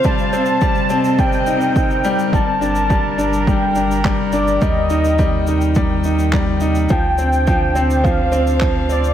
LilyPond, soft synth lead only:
\new Staff \with { instrumentName = "Soft synth lead" } { \time 4/4 \key g \minor \tempo 4 = 105 a''2 g''2 | a''4.~ a''16. a''32 g''4 r8 d''8 | ees''2 r2 | g''2 f''4 r8 d''8 | }